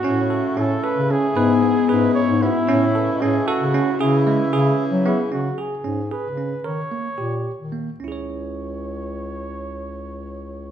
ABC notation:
X:1
M:5/8
L:1/16
Q:1/4=114
K:C#m
V:1 name="Flugelhorn"
F4 A2 B2 G2- | G4 B2 c2 E2- | E4 G2 F4 | E8 E2 |
F2 G4 B4 | c8 z2 | c8- c2- | c8- c2 |]
V:2 name="Celesta"
z6 E4- | E2 z2 C4 F2- | F2 B d e4 F2- | F2 z6 G2- |
G2 z8 | z8 z2 | z8 z2 | z8 z2 |]
V:3 name="Tine electric piano"
C2 A2 C2 A2 C2 | B2 B,2 G4 B,2 | C2 A2 C2 A2 C2 | G2 G,2 G4 B,2 |
C2 G2 C2 G2 C2 | ^A2 ^A,2 =G4 A,2 | [CEGc]8- [CEGc]2- | [CEGc]8- [CEGc]2 |]
V:4 name="Vibraphone"
C8- C2 | B,8- B,2 | C8- C2 | C8 z2 |
z8 z2 | z8 z2 | z8 z2 | z8 z2 |]
V:5 name="Harmonium"
E8- E2 | E8- E2- | E8- E2 | E8- E2 |
z8 z2 | z8 z2 | z8 z2 | z8 z2 |]
V:6 name="Harmonium" clef=bass
[C,A,]8- [C,A,]2 | [G,D]8- [G,D]2 | [C,A,]8- [C,A,]2 | [C,E,]8- [C,E,]2 |
z8 z2 | z8 z2 | z8 z2 | z8 z2 |]
V:7 name="Bass clarinet" clef=bass
A,,4 A,,2 z C,2 z | G,,4 G,,2 z G,,2 z | A,,4 A,,2 z C,2 z | C,4 C,2 z F,2 z |
C,2 z2 G,,3 C,3 | D,2 z2 ^A,,3 D,3 | C,,8- C,,2- | C,,8- C,,2 |]